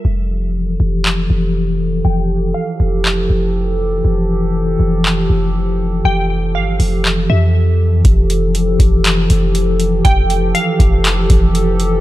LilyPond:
<<
  \new Staff \with { instrumentName = "Synth pluck" } { \time 4/4 \key f \major \tempo 4 = 120 r1 | g''4 f''2. | r1 | g''4 f''4. e''4. |
r1 | g''4 f''2. | }
  \new Staff \with { instrumentName = "Analog synth pad" } { \time 4/4 \key f \major <e f g' a'>1~ | <e f g' a'>1~ | <e f g' a'>1~ | <e f g' a'>1 |
<e f g' a'>1~ | <e f g' a'>1 | }
  \new Staff \with { instrumentName = "808-style bass" } { \clef bass \time 4/4 \key f \major f,,4. f,,4 f,,4. | f,,4 r8 f,,4 f,,4. | f,,4. f,,4 f,,4. | f,,4 g,,8 f,,4 f,4. |
f,,4. f,,4 f,,4. | f,,4 r8 f,,4 f,,4. | }
  \new DrumStaff \with { instrumentName = "Drums" } \drummode { \time 4/4 r4 r4 hc4 r4 | r4 r4 hc4 r4 | r4 r4 hc4 r4 | r4 r8 hho8 hc4 r4 |
<hh bd>8 hh8 hh8 <hh bd>8 <hc hh>8 hh8 hh8 hh8 | <hh bd>8 hh8 hh8 <hh bd>8 <hc hh>8 <hh bd>8 hh8 hh8 | }
>>